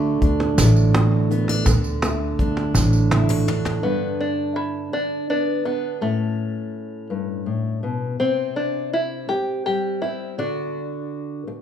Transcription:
Already playing: D2 D3 A3 D4 F#4
0.22 D2 D4, kick, closed hi-hat
0.40 cajon slap
0.58 A1 A2, cajon bass, snare, closed hi-hat, tambourine
0.77 tambourine
0.94 F#4, cajon slap, closed hi-hat
1.12 cajon slap
1.30 B3, cajon slap, closed hi-hat
1.48 D4, cajon slap
1.66 D2 D3, cajon bass, kick, closed hi-hat, tambourine
1.84 tambourine
2.02 A3, cajon slap, closed hi-hat, tambourine
2.39 D2 D4, kick, closed hi-hat
2.57 cajon slap
2.74 A1 A2, cajon bass, snare, tambourine
2.93 tambourine
3.11 E4, cajon slap, high tom
3.29 F#4, cajon slap, mid tom
3.47 D4, cajon slap, mid tom
3.65 cajon slap, floor tom
3.83 G2 B3 D4
4.21 D4
4.56 E4
4.93 D4, muted steel-string acoustic guitar stroke
5.30 B3 D4
5.65 B3 D4
6.01 A2 A3 C#4
7.10 G2
7.46 A2
7.83 B2
8.20 C3 C4
8.56 D4
8.93 E4
9.29 G4, muted steel-string acoustic guitar stroke
9.66 G3 G4
10.02 C4 E4
10.38 D3 D4 F#4
11.47 muted steel-string acoustic guitar stroke

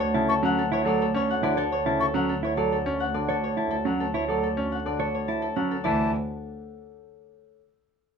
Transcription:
Already playing: D2 A4 D5 F#5 A5
0.00 C#5
0.14 C#3 E4 A5
0.29 A4 C#6
0.43 F#3 C#4 F#5
0.58 A4
0.72 E4 C#5
0.85 F#3 A4 D5
1.02 A4
1.15 C#4 C#5
1.30 F#5
1.43 D3 E4 D5
1.57 A4 C#5
1.72 C#5
1.86 C#3 E4 A5
2.00 A4 C#6
2.14 F#3 C#4 F#5
2.29 A4
2.43 E4 C#5
2.57 F#3 A4 D5
2.72 A4
2.86 C#4
3.00 F#5
3.14 D3 D5
3.29 A4 C#5
3.44 C#5
3.57 E4 A5
3.71 A4
3.85 F#3 C#4 F#5
4.00 A4
4.14 E4 C#5
4.28 F#3 A4 D5
4.43 A4
4.57 C#4
4.72 F#5
4.86 D3 D5
4.99 A4 C#5
5.15 C#5
5.28 E4 A5
5.42 A4
5.56 F#3 C#4 F#5
5.71 A4
5.84 D2 E3 E4 D5 A5

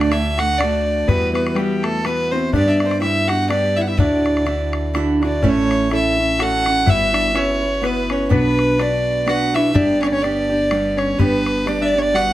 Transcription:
Already playing: D2 A2 A3 D4 F#4 D5
0.01 bodhran
0.11 D3 A3 D4 E4 F#4 E5, bodhran
0.38 D3 A3 D4 F#4 F#5, bodhran
0.58 D3 A3 D4 D5, bodhran
0.63 F#4
1.08 E2 E3 G3 B3 E4 F#4 B4, bodhran
1.34 B3 B4, bodhran
1.47 bodhran
1.55 G3 B3 E4 G4, bodhran
1.60 F#4
1.83 A3 A4, bodhran
2.05 G3 B3 E4 F#4 B4, bodhran
2.31 C4 E4 F#4 C5
2.35 B3
2.53 G2 G3 B3 D4 G4 D5, bodhran
2.68 D4 D5 E5
2.80 bodhran
2.85 D4 C5 D5
2.91 bodhran
3.01 G3 B3 D4 E4 G4 E5, bodhran
3.28 B3 D4 F#4 G4 F#5, bodhran
3.49 G3 B3 D4 G4 D5, bodhran
3.77 E4 E5
3.81 F#5
3.88 E4 E5
3.97 D2 A2 D3 D4 E4 F#4 D5, bodhran
4.26 bodhran
4.37 bodhran
4.45 D3 D4 E4 F#4, bodhran
4.73 bodhran
4.94 D3 D4 E4 F#4, bodhran
5.21 D3 D4 E4 F#4, bodhran
5.26 D5
5.42 A1 A2 A3 C#4 E4 A4, bodhran
5.49 C#5
5.71 bodhran
5.90 A3 C#4 E4 A4, bodhran
5.95 E5
6.17 C#4 E4 A4
6.38 A3 C#4 E4 F#4 A4, bodhran
6.43 F#5
6.64 C#4 E4 A4, bodhran
6.86 G1 G3 B3 E4 F#4 B4, bodhran
6.90 E5
7.14 D4, bodhran
7.34 B3 C#4 E4 F#4 B4 C#5, bodhran
7.61 E4 F#4 B4
7.81 B3 E4 F#4 B4, bodhran
7.86 B4
8.10 C#4 C#5, bodhran
8.26 B3 C#5
8.30 B1 D4 F#4 B4, bodhran
8.59 bodhran
8.78 B3 D4 F#4 B4 D5, bodhran
9.26 B3 D4 F#4 B4 F#5, bodhran
9.54 D4 E4 F#4 B4 E5, bodhran
9.73 G1 G3 B3 D4 G4 D5, bodhran
10.02 C#4 C#5, bodhran
10.07 D5
10.12 C#4 C#5
10.22 G3 B3 D4 G4 D5, bodhran
10.49 B3 D4 G4
10.71 G3 B3 D4 G4, bodhran
10.97 C#4 C#5, bodhran
11.19 G1 G3 B3 D4 G4 B4, bodhran
11.46 bodhran
11.66 G3 B3 D4 G4 D5, bodhran
11.82 D4 D5 E5
11.95 B3 D4 G4 C#5
12.02 D5
12.14 G3 B3 D4 F#4 F#5, bodhran

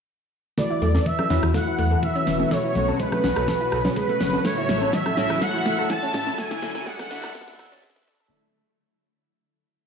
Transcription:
0.58 E3 F#3 A3 B3 E4 F#4 B4 D5, kick, snare, closed hi-hat, riser
0.70 E4
0.82 E2 A3, open hi-hat, low conga
0.95 A4, snare, closed hi-hat, high conga
1.06 E3 E5, kick, closed hi-hat
1.19 A4, cross-stick, high conga, low conga
1.30 E2 E3 C#4 E4 F#4 B4, snare, open hi-hat
1.43 E2 E3, cross-stick, closed hi-hat
1.54 E3 A3 E4 F#4 B4 F#5, kick, snare, closed hi-hat
1.67 E4
1.79 E2 A3, open hi-hat
1.91 A4, closed hi-hat
2.03 E3 E5, kick, closed hi-hat
2.15 C#4, closed hi-hat
2.27 E1 C#4, snare, open hi-hat
2.40 A3, closed hi-hat, high conga
2.51 B2 C#3 A3 C#4 F#4 B4 C#5, kick, snare, closed hi-hat
2.64 E4
2.75 B1 A3, open hi-hat, low conga
2.88 A4, closed hi-hat, high conga
2.99 G#3 B4, kick, closed hi-hat
3.12 A3, cross-stick, high conga, low conga
3.24 B1 B2 C#4 F#4 B4, snare, open hi-hat
3.36 B1 A4, cross-stick, closed hi-hat
3.48 B2 C#4 F#4 A4 B4, kick, snare, closed hi-hat
3.61 E4
3.72 B1 A4, cross-stick, open hi-hat
3.85 C#4, snare, closed hi-hat, low conga
3.96 G#3 B4, kick, closed hi-hat
4.09 A3, closed hi-hat
4.20 F#1 C#4, snare, open hi-hat
4.33 A4, closed hi-hat, high conga
4.44 A2 A3 C#4 E4 F#4 A4 C#5 E5, kick, snare, closed hi-hat
4.57 E4
4.69 A1 A3, snare, open hi-hat, low conga
4.82 A4, closed hi-hat, high conga
4.93 E3 E5, kick, snare, closed hi-hat
5.06 A4, cross-stick, high conga, low conga
5.17 A1 A2 C#4 E4 F#4 A4 E5, snare, open hi-hat
5.30 A1 E3, cross-stick, closed hi-hat
5.41 A2 A3 C#4 E4 F#4 A4 E5 F#5, kick, snare, closed hi-hat
5.54 E4
5.66 A1 A3, snare, open hi-hat
5.78 A4, closed hi-hat
5.90 E3 A5, kick, snare, closed hi-hat
6.03 C#4, closed hi-hat
6.14 A2 C#4, snare, open hi-hat
6.27 A3, closed hi-hat, high conga
6.38 D3 A3 D4 E4 F#4 A4 E5 G#5, kick, snare, closed hi-hat
6.51 E4, snare, closed hi-hat
6.62 D2 A3, snare, open hi-hat, low conga
6.75 A4, snare, closed hi-hat, high conga
6.86 G#3 F#5, kick, snare, closed hi-hat
6.99 A3, cross-stick, snare, high conga, low conga
7.11 D2 D3 D4 E4 F#4 A4 E5, snare, open hi-hat
7.23 D2 A4, cross-stick, snare, closed hi-hat
7.35 D3 A4, kick, snare, closed hi-hat
7.41 snare
7.48 E4, snare
7.53 snare
7.59 D2 A4, cross-stick, snare, open hi-hat
7.66 snare
7.72 D3 C#4 D4 E4 F#4 A4 E5, snare, closed hi-hat, low conga
7.78 snare
7.83 G#3, kick, snare, closed hi-hat
7.90 snare
7.96 A3, snare, closed hi-hat
8.02 snare
8.08 D4, snare, open hi-hat
8.14 snare
8.20 A4, snare, closed hi-hat, high conga
8.26 snare

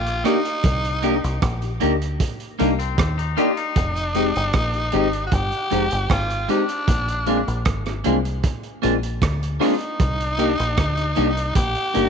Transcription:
Already playing: A#1 F4
0.06 closed hi-hat
0.24 A#3 D4 D#4 G4, cross-stick, closed hi-hat
0.45 closed hi-hat
0.64 C2, kick, closed hi-hat
0.85 closed hi-hat
1.02 A#3 D4 D#4 G4, closed hi-hat
1.24 C2, closed hi-hat
1.42 A#1, kick, cross-stick, closed hi-hat
1.62 D#4 G4, closed hi-hat
1.80 D2 A#3 D4 D#4 G4, closed hi-hat
2.02 closed hi-hat
2.20 kick, closed hi-hat
2.40 closed hi-hat
2.59 C2 A#3 D4 D#4 G4, closed hi-hat
2.79 C4, closed hi-hat
2.98 D#2, kick, cross-stick, closed hi-hat
3.18 D#4, closed hi-hat
3.37 A#3 D4 D#4 F4 G4, closed hi-hat
3.57 D#4, closed hi-hat
3.76 F1, kick, closed hi-hat
3.96 closed hi-hat
4.15 G#3 C4 D#4 G4, closed hi-hat
4.35 G1, closed hi-hat
4.53 A#1, kick, cross-stick, closed hi-hat
4.73 D#4 G4, closed hi-hat
4.92 G#1 G#3 C4 D#4 G4, closed hi-hat
5.13 closed hi-hat
5.26 F#4
5.32 G1 G4, kick, closed hi-hat
5.52 closed hi-hat
5.71 F1 G#3 C4 D#4 G4, closed hi-hat
5.91 G1, closed hi-hat
6.09 G#1 F4, kick, cross-stick, closed hi-hat
6.30 closed hi-hat
6.48 G#3 C4 D4 D#4 G4, closed hi-hat
6.69 closed hi-hat
6.88 A#1, kick, closed hi-hat
7.08 closed hi-hat
7.26 G#3 A#3 C4 D4 F4 G#4, closed hi-hat
7.48 A#1, closed hi-hat
7.65 G#1, kick, cross-stick, closed hi-hat
7.86 D4 F4, cross-stick, closed hi-hat
8.04 C2 G#3 A#3 C4 D4 F4 G#4, closed hi-hat
8.25 closed hi-hat
8.43 kick, closed hi-hat
8.63 closed hi-hat
8.82 A#1 G#3 A#3 C4 D4 F4 G#4, closed hi-hat
9.03 closed hi-hat
9.22 D2, kick, cross-stick, closed hi-hat
9.43 closed hi-hat
9.60 G#3 A#3 C4 D4 D#4 F4 G#4, cross-stick, open hi-hat
9.81 closed hi-hat
10.00 C2, kick, closed hi-hat
10.21 closed hi-hat
10.38 A#3 D4 D#4 G4, closed hi-hat
10.60 A#1, closed hi-hat
10.77 D2, kick, cross-stick, closed hi-hat
10.97 D#4 G4, closed hi-hat
11.16 C2 A#3 D4 D#4 G4, closed hi-hat
11.37 closed hi-hat
11.55 A#1 G4, kick, closed hi-hat
11.75 closed hi-hat
11.94 G1 A#3 D4 D#4 G4, closed hi-hat

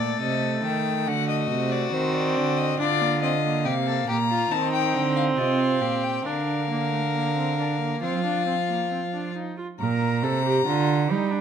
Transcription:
Already playing: A#2 A3 A4 D5
0.21 C3 D#5
0.64 D#3 G5
1.07 D3 F#4 F#5
1.29 D#5
1.50 C3
1.72 D5
1.93 D#3 C4 C5
2.14 D5
2.36 D3
2.58 D#5
2.79 D3 D4 F4 D5
3.01 A#3
3.22 C4 D#5
3.44 A#3
3.65 C3 G4 F5
3.87 A4
4.08 A#2 G4 A#5
4.30 F4
4.51 D#3 C4 D#4 A5
4.73 G5
4.94 D3
5.16 F5
5.37 C3 F4 D#5
5.60 F5
5.81 A#2 G4
6.04 G5
6.26 D3 D4 A#4 F5
6.70 A#3
6.93 A3
7.14 A#3
7.37 C4
7.58 D4
7.81 A#3
8.02 F3 C4 F4 F5
8.25 D4
8.47 C4
8.69 A#3
8.91 C4
9.13 D4
9.36 D#4
9.58 F4
9.79 A#2 A#4 A#5
10.23 C3 A4
10.45 G4
10.66 D3 F4
11.09 G3 D#4
11.31 D4

